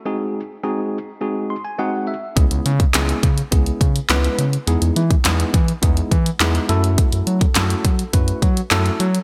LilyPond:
<<
  \new Staff \with { instrumentName = "Tine electric piano" } { \time 4/4 \key cis \minor \tempo 4 = 104 <gis bis dis' fis' gis'>8 r8 <gis bis dis' fis' gis'>8 r8 <gis bis dis' fis' gis'>8 bis''16 gis''16 <gis bis dis' fis' gis' fis''>8 e''8 | <gis b cis' e' gis'>8 r8 <gis b cis' e' gis'>8 r8 <gis b cis' e' gis'>8 r8 <gis b cis' e' b'>8 r8 | <gis b dis' e' gis'>8 r8 <gis b dis' e' gis'>8 r8 <gis b dis' e' gis'>8 r8 <gis b dis' e' gis'>8 <a cis' e' fis' a'>8~ | <a cis' e' fis' a'>8 r8 <a cis' e' fis' a'>8 r8 <a cis' e' fis' b'>8 r8 <a cis' e' fis' a'>8 r8 | }
  \new Staff \with { instrumentName = "Analog synth bass" } { \clef bass \time 4/4 \key cis \minor r1 | cis,16 cis,16 cis8 cis,8 cis8 cis,8 cis8 cis,8 cis8 | e,16 e,16 e8 e,8 e8 e,8 e8 e,8 fis,8~ | fis,16 fis,16 fis8 fis,8 fis8 fis,8 fis8 fis,8 fis8 | }
  \new DrumStaff \with { instrumentName = "Drums" } \drummode { \time 4/4 r4 r4 r4 r4 | <hh bd>16 hh16 hh16 <hh bd>16 <hc hh sn>16 hh16 <hh bd>16 hh16 <hh bd>16 hh16 <hh bd>16 hh16 <hc hh sn>16 hh16 hh16 hh16 | hh16 hh16 hh16 <hh bd>16 <hc hh sn>16 hh16 <hh bd>16 hh16 <hh bd>16 hh16 <hh bd>16 hh16 <hc hh sn>16 hh16 hh16 hh16 | <hh bd>16 hh16 hh16 <hh bd>16 <hc hh sn>16 hh16 <hh bd>16 hh16 <hh bd>16 hh16 <hh bd>16 hh16 <hc hh sn>16 hh16 hh16 hh16 | }
>>